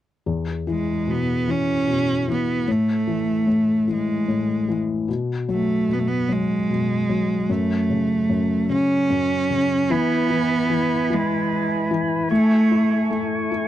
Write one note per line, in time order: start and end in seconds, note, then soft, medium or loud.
0.26 2.63 E2 soft
0.67 1.46 E3 soft
0.67 1.12 G#3 medium
1.07 1.85 B2 soft
1.07 1.52 B3 medium
1.48 2.26 E3 soft
1.48 2.29 C#4 medium
1.87 2.65 B2 soft
2.28 2.67 E3 soft
2.32 2.72 B3 medium
2.68 3.45 A2 soft
2.68 3.90 A3 medium
3.07 3.86 E3 soft
3.47 4.27 A2 soft
3.88 4.67 E3 soft
3.93 4.77 G#3 medium
4.28 5.06 A2 soft
4.69 5.07 E3 soft
5.08 5.87 B2 soft
5.49 6.27 F#3 soft
5.49 5.94 A3 medium
5.89 6.68 B2 soft
5.93 6.01 B3 medium
5.99 6.09 A3 medium
6.07 6.34 B3 medium
6.29 7.08 F#3 soft
6.29 7.53 G#3 medium
6.69 7.47 B2 soft
7.09 7.48 F#3 soft
7.50 8.28 F#2 soft
7.50 8.71 A3 medium
7.90 8.68 C#3 soft
8.29 9.09 F#2 soft
8.70 9.49 C#3 soft
8.70 9.94 C#4 medium
9.10 9.88 F#2 soft
9.50 9.89 C#3 soft
9.90 10.29 E3 medium
9.90 11.14 B3 medium
9.90 13.68 E4 medium
9.90 12.29 B4 soft
9.90 13.68 G#5 soft
9.90 12.29 B5 medium
10.30 10.68 E3 soft
10.70 11.09 E3 soft
11.10 11.89 E3 soft
11.10 11.92 G#3 medium
11.91 12.30 E3 soft
12.31 13.09 A3 medium
12.31 13.18 A3 medium
12.31 13.68 A4 soft
12.31 13.68 C#6 medium
12.71 13.50 E4 soft
13.11 13.68 A3 soft
13.52 13.68 E4 soft